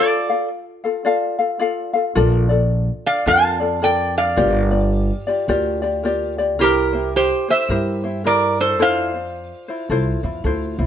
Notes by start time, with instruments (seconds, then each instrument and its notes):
Already playing: ukulele F4 A4 D5 F5, resonator guitar played with a steel bar A4 D5
0.29 ukulele F4 A4 F5
0.84 ukulele F4 A4 F5
1.05 ukulele F4 A4 D5 F5
1.39 ukulele F4 A4 F5
1.59 ukulele F4 A4 D5 F5
1.93 ukulele F4 A4 F5
2.15 upright bass A#1, ukulele F4 A4 A#4 D5
2.49 ukulele F4 A4 D5
3.06 resonator guitar played with a steel bar D5 F5
3.26 upright bass F2, ukulele F4 A4 A#4 D5, resonator guitar played with a steel bar F5 A5
3.60 ukulele F4 A4 D5
3.81 ukulele F4 A4 A#4 D5, resonator guitar played with a steel bar D5 G5
4.18 resonator guitar played with a steel bar D5 F5
4.36 upright bass G1, ukulele F4 G4 A#4 D5
4.71 ukulele F4 G4 D5
5.27 ukulele F4 G4 D5
5.48 upright bass D2, ukulele F4 G4 A#4 D5
5.82 ukulele F4 G4 D5
6.03 ukulele F4 G4 A#4 D5
6.38 ukulele F4 G4 D5
6.58 upright bass C2, ukulele E4 G4 A#4 C5, resonator guitar played with a steel bar G4
6.63 resonator guitar played with a steel bar A#4
6.93 ukulele E4 G4 C5
7.16 resonator guitar played with a steel bar G4 C5
7.48 ukulele E4 G4 C5, resonator guitar played with a steel bar C5 E5
7.69 upright bass G2, ukulele E4 G4 A#4 C5
8.04 ukulele E4 G4 C5
8.24 ukulele E4 G4 A#4 C5, resonator guitar played with a steel bar A#4 D5
8.60 resonator guitar played with a steel bar A4 C5
8.78 upright bass F2, ukulele E4 F4 A4 C5, resonator guitar played with a steel bar C5
8.82 resonator guitar played with a steel bar F5
9.14 ukulele F4 C5
9.68 ukulele E4 F4 C5
9.90 upright bass C2, ukulele E4 F4 A4 C5
10.23 upright bass E2, ukulele E4 F4 C5
10.44 upright bass D2, ukulele E4 F4 A4 C5
10.78 upright bass C2, ukulele E4 F4 C5